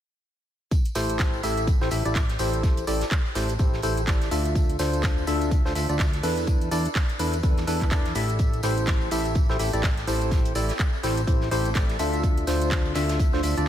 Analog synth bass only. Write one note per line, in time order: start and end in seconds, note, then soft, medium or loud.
0.95 1.41 A1 medium
1.43 1.79 A1 medium
1.81 1.89 A1 medium
1.91 2.03 A1 medium
2.05 2.37 A1 medium
2.39 2.85 A1 medium
2.87 3.03 A1 loud
3.35 3.57 A1 medium
3.59 3.81 A1 medium
3.83 4.05 A1 medium
4.31 4.77 D2 medium
4.79 5.25 D2 medium
5.27 5.63 D2 medium
5.65 5.73 D2 medium
5.75 5.87 D2 medium
5.89 6.21 D2 medium
6.23 6.69 E2 medium
6.71 6.87 E2 medium
7.19 7.41 E2 medium
7.43 7.65 E2 loud
7.67 7.89 E2 medium
7.91 8.13 E2 medium
8.15 8.61 A1 medium
8.63 9.09 A1 loud
9.11 9.47 A1 medium
9.49 9.57 A1 medium
9.59 9.71 A1 medium
9.73 10.05 A1 medium
10.07 10.53 A1 medium
10.55 10.71 A1 loud
11.03 11.25 A1 medium
11.27 11.49 A1 medium
11.51 11.73 A1 medium
11.99 12.45 D2 medium
12.47 12.93 D2 loud
12.95 13.31 D2 medium
13.33 13.41 D2 medium
13.43 13.55 D2 medium
13.57 13.68 D2 medium